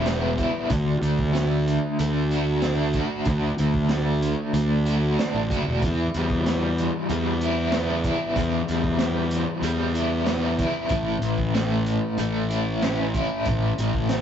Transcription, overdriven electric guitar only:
0, 0, Header, 1, 2, 480
1, 0, Start_track
1, 0, Tempo, 637620
1, 525, Time_signature, 4, 2, 24, 8
1, 10700, End_track
2, 0, Start_track
2, 0, Title_t, "Overdriven electric guitar"
2, 0, Program_c, 0, 29
2, 0, Note_on_c, 0, 52, 63
2, 0, Note_on_c, 0, 55, 71
2, 0, Note_on_c, 0, 64, 68
2, 44, Note_on_c, 0, 59, 61
2, 270, Note_off_c, 0, 64, 0
2, 279, Note_on_c, 0, 64, 68
2, 522, Note_off_c, 0, 52, 0
2, 523, Note_off_c, 0, 64, 0
2, 525, Note_off_c, 0, 59, 0
2, 525, Note_on_c, 0, 50, 70
2, 530, Note_off_c, 0, 55, 0
2, 772, Note_on_c, 0, 57, 64
2, 992, Note_off_c, 0, 57, 0
2, 1001, Note_on_c, 0, 57, 64
2, 1242, Note_off_c, 0, 50, 0
2, 1251, Note_on_c, 0, 50, 62
2, 1494, Note_off_c, 0, 57, 0
2, 1503, Note_on_c, 0, 57, 71
2, 1741, Note_on_c, 0, 66, 70
2, 1986, Note_on_c, 0, 62, 59
2, 2213, Note_off_c, 0, 66, 0
2, 2222, Note_on_c, 0, 66, 71
2, 2452, Note_off_c, 0, 50, 0
2, 2468, Note_on_c, 0, 50, 66
2, 2693, Note_off_c, 0, 57, 0
2, 2702, Note_on_c, 0, 57, 59
2, 2938, Note_off_c, 0, 57, 0
2, 2947, Note_on_c, 0, 57, 67
2, 3165, Note_off_c, 0, 50, 0
2, 3174, Note_on_c, 0, 50, 58
2, 3180, Note_off_c, 0, 62, 0
2, 3408, Note_off_c, 0, 57, 0
2, 3417, Note_on_c, 0, 57, 67
2, 3418, Note_off_c, 0, 66, 0
2, 3656, Note_on_c, 0, 66, 67
2, 3906, Note_on_c, 0, 62, 59
2, 4141, Note_off_c, 0, 66, 0
2, 4150, Note_on_c, 0, 66, 64
2, 4375, Note_off_c, 0, 50, 0
2, 4376, Note_off_c, 0, 57, 0
2, 4380, Note_off_c, 0, 62, 0
2, 4382, Note_off_c, 0, 66, 0
2, 4408, Note_on_c, 0, 52, 69
2, 4648, Note_on_c, 0, 55, 58
2, 4861, Note_off_c, 0, 55, 0
2, 4870, Note_on_c, 0, 55, 66
2, 5117, Note_off_c, 0, 52, 0
2, 5120, Note_on_c, 0, 52, 61
2, 5341, Note_off_c, 0, 55, 0
2, 5350, Note_on_c, 0, 55, 73
2, 5596, Note_on_c, 0, 64, 72
2, 5827, Note_on_c, 0, 59, 58
2, 6061, Note_off_c, 0, 64, 0
2, 6064, Note_on_c, 0, 64, 67
2, 6294, Note_off_c, 0, 52, 0
2, 6297, Note_on_c, 0, 52, 65
2, 6524, Note_off_c, 0, 55, 0
2, 6533, Note_on_c, 0, 55, 61
2, 6758, Note_off_c, 0, 55, 0
2, 6767, Note_on_c, 0, 55, 70
2, 7017, Note_off_c, 0, 52, 0
2, 7020, Note_on_c, 0, 52, 59
2, 7021, Note_off_c, 0, 59, 0
2, 7242, Note_off_c, 0, 55, 0
2, 7251, Note_on_c, 0, 55, 69
2, 7480, Note_off_c, 0, 64, 0
2, 7483, Note_on_c, 0, 64, 70
2, 7728, Note_on_c, 0, 59, 60
2, 7970, Note_off_c, 0, 64, 0
2, 7974, Note_on_c, 0, 64, 74
2, 8210, Note_off_c, 0, 59, 0
2, 8212, Note_off_c, 0, 55, 0
2, 8217, Note_on_c, 0, 45, 69
2, 8444, Note_off_c, 0, 52, 0
2, 8447, Note_on_c, 0, 52, 62
2, 8687, Note_on_c, 0, 57, 72
2, 8929, Note_off_c, 0, 52, 0
2, 8932, Note_on_c, 0, 52, 61
2, 9167, Note_off_c, 0, 57, 0
2, 9176, Note_on_c, 0, 57, 73
2, 9403, Note_off_c, 0, 64, 0
2, 9406, Note_on_c, 0, 64, 66
2, 9414, Note_off_c, 0, 45, 0
2, 9654, Note_on_c, 0, 61, 59
2, 9895, Note_off_c, 0, 64, 0
2, 9904, Note_on_c, 0, 64, 69
2, 10140, Note_on_c, 0, 45, 69
2, 10373, Note_off_c, 0, 57, 0
2, 10393, Note_off_c, 0, 52, 0
2, 10396, Note_on_c, 0, 52, 62
2, 10627, Note_on_c, 0, 57, 66
2, 10700, Note_off_c, 0, 45, 0
2, 10700, Note_off_c, 0, 52, 0
2, 10700, Note_off_c, 0, 57, 0
2, 10700, Note_off_c, 0, 61, 0
2, 10700, Note_off_c, 0, 64, 0
2, 10700, End_track
0, 0, End_of_file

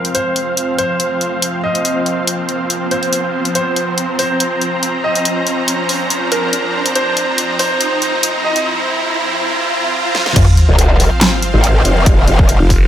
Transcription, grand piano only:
0, 0, Header, 1, 2, 480
1, 0, Start_track
1, 0, Tempo, 425532
1, 166, Time_signature, 4, 2, 24, 8
1, 14525, End_track
2, 0, Start_track
2, 0, Title_t, "Grand piano"
2, 0, Program_c, 0, 0
2, 165, Note_on_c, 0, 72, 94
2, 796, Note_off_c, 0, 72, 0
2, 884, Note_on_c, 0, 72, 96
2, 1756, Note_off_c, 0, 72, 0
2, 1845, Note_on_c, 0, 75, 86
2, 2477, Note_off_c, 0, 75, 0
2, 3286, Note_on_c, 0, 72, 83
2, 3917, Note_off_c, 0, 72, 0
2, 4005, Note_on_c, 0, 72, 91
2, 4637, Note_off_c, 0, 72, 0
2, 4726, Note_on_c, 0, 72, 91
2, 5597, Note_off_c, 0, 72, 0
2, 5686, Note_on_c, 0, 75, 87
2, 6317, Note_off_c, 0, 75, 0
2, 7126, Note_on_c, 0, 70, 88
2, 7757, Note_off_c, 0, 70, 0
2, 7846, Note_on_c, 0, 72, 100
2, 8477, Note_off_c, 0, 72, 0
2, 8566, Note_on_c, 0, 72, 99
2, 9437, Note_off_c, 0, 72, 0
2, 9526, Note_on_c, 0, 75, 92
2, 9766, Note_off_c, 0, 75, 0
2, 14525, End_track
0, 0, End_of_file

